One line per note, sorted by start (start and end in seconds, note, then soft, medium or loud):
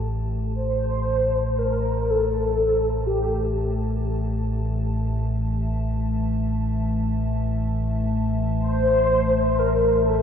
0.00 10.22 A1 medium
0.00 10.22 A2 medium
0.00 10.22 E3 medium
0.00 10.22 A3 medium
0.00 10.22 E5 medium
0.00 10.22 A5 medium
0.55 1.60 C5 loud
1.58 2.11 A#4 loud
2.10 3.06 A4 loud
3.06 3.78 G4 medium
8.59 9.60 C5 loud
9.59 10.07 A#4 loud
10.06 10.22 A4 medium